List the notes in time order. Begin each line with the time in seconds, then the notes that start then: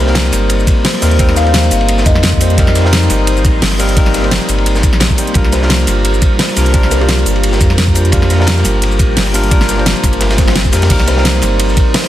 Already playing: C2 G3 A#3 C4 D#4 A#4 C5
0.05 G3 A#3 C4 D#4, snare
0.10 A#4
0.15 snare, closed hi-hat, ride
0.25 snare, shaker
0.33 G1, snare, open hi-hat, ride, shaker
0.49 closed hi-hat, ride
0.59 shaker
0.67 kick, closed hi-hat, ride, shaker
0.85 C5, snare, closed hi-hat, open hi-hat
0.94 snare, shaker
1.01 D#2 G3 A#3 C4 D#4 A#4 C5, snare, open hi-hat, ride, shaker
1.11 closed hi-hat
1.18 G3 A#3 C4 D#4 A#4, kick, closed hi-hat, ride
1.29 snare
1.36 F5, snare, closed hi-hat, ride, shaker
1.44 G3 A#3 C4 D#4, ride
1.48 C5
1.54 snare, closed hi-hat, ride
1.63 ride, shaker
1.71 G1, open hi-hat, ride, shaker
1.81 ride
1.89 closed hi-hat, ride
1.98 snare, shaker
2.06 F2 D#5, kick, closed hi-hat, ride, shaker
2.15 snare
2.23 snare, closed hi-hat, ride
2.33 kick, shaker
2.40 G3 A#3 C4 D#4 C5, open hi-hat, ride, shaker
2.50 closed hi-hat
2.57 G3 A#3 C4 D#4 A#4, kick, closed hi-hat, ride
2.67 snare
2.75 snare, closed hi-hat, ride, shaker
2.82 G3 A#3 C4 D#4, snare
2.87 A#4
2.93 snare, closed hi-hat, ride
3.02 snare, shaker
3.10 G1, snare, open hi-hat, ride, shaker
3.27 closed hi-hat, ride
3.37 shaker
3.45 A#1, kick, closed hi-hat, ride, shaker
3.62 G1, snare, closed hi-hat, open hi-hat
3.72 snare, shaker
3.78 G3 A#3 C4 D#4 A#4, snare, open hi-hat, ride, shaker
3.89 closed hi-hat
3.96 G3 A#3 C4 D#4 A#4, kick, closed hi-hat, ride
4.06 snare
4.14 snare, closed hi-hat, ride, shaker
4.21 G3 A#3 C4 D#4, ride
4.26 C5
4.31 snare, closed hi-hat, ride
4.41 ride, shaker
4.49 G1, open hi-hat, ride, shaker
4.58 ride
4.66 closed hi-hat, ride
4.75 snare, shaker
4.83 kick, closed hi-hat, ride, shaker
4.92 A#1, snare
5.00 snare, closed hi-hat, ride
5.10 kick, snare, shaker
5.17 G3 A#3 C4 D#4 C5, open hi-hat, ride, shaker
5.27 closed hi-hat
5.34 C2 G3 A#3 D4 F4 A#4, kick, closed hi-hat, ride
5.44 snare
5.52 C5, snare, closed hi-hat, ride, shaker
5.60 G3 A#3 D4 F4, snare
5.65 A#4
5.70 snare, closed hi-hat, ride
5.79 snare, shaker
5.87 G1, snare, open hi-hat, ride, shaker
6.05 closed hi-hat, ride
6.14 shaker
6.22 kick, closed hi-hat, ride, shaker
6.39 C5, snare, closed hi-hat, open hi-hat
6.49 snare, shaker
6.56 C2 G3 A#3 D4 F4 A#4, snare, open hi-hat, ride, shaker
6.66 closed hi-hat
6.73 G3 A#3 D4 F4 A#4, kick, closed hi-hat, ride
6.83 snare
6.91 A#4, snare, closed hi-hat, ride, shaker
6.98 G3 A#3 D4 F4 G4, ride
7.03 C5
7.09 snare, closed hi-hat, ride
7.18 ride, shaker
7.26 G1, open hi-hat, ride, shaker
7.36 ride
7.44 closed hi-hat, ride
7.52 snare, shaker
7.61 F2, kick, closed hi-hat, ride, shaker
7.70 snare
7.78 snare, closed hi-hat, ride
7.87 kick, shaker
7.94 G3 A#3 D4 F4 C5, open hi-hat, ride, shaker
8.05 closed hi-hat
8.12 G3 A#3 D4 F4 G4 A#4, kick, closed hi-hat, ride
8.22 snare
8.30 snare, closed hi-hat, ride, shaker
8.37 G3 A#3 D4 F4, snare
8.42 A#4
8.47 snare, closed hi-hat, ride
8.57 snare, shaker
8.65 G1, snare, open hi-hat, ride, shaker
8.82 closed hi-hat, ride
8.92 shaker
8.99 A#1, kick, closed hi-hat, ride, shaker
9.17 G1, snare, closed hi-hat, open hi-hat
9.26 snare, shaker
9.33 G3 A#3 D4 F4 A#4, snare, open hi-hat, ride, shaker
9.44 closed hi-hat
9.50 G3 A#3 D4 F4 A#4, kick, closed hi-hat, ride
9.61 snare
9.69 snare, closed hi-hat, ride, shaker
9.76 G3 A#3 D4 F4, ride
9.81 C5
9.86 snare, closed hi-hat, ride
9.96 ride, shaker
10.03 G1, kick, snare, open hi-hat, ride, shaker
10.13 closed hi-hat, ride
10.21 snare, closed hi-hat, ride, swell
10.30 snare, ride, shaker
10.38 G1, kick, snare, closed hi-hat, ride, shaker
10.48 snare, ride
10.56 snare, closed hi-hat, ride
10.65 kick, snare, shaker
10.72 F2 G3 A#3 D4 F4 A#4, snare, open hi-hat, ride, shaker
10.82 snare, closed hi-hat, ride
10.89 C2 G3 A#3 C4 D#4 A#4 C5, kick, closed hi-hat, crash, ride, ride bell
11.00 snare
11.08 C5, snare, closed hi-hat, ride, ride bell, shaker
11.15 G3 A#3 C4 D#4, snare
11.20 A#4
11.25 snare, closed hi-hat, ride, ride bell
11.34 snare, shaker
11.42 G1, snare, open hi-hat, ride, ride bell, shaker
11.60 closed hi-hat, ride, ride bell
11.69 shaker
11.77 kick, closed hi-hat, ride, ride bell, shaker
11.94 C5, snare, closed hi-hat, open hi-hat, ride bell
12.04 snare, shaker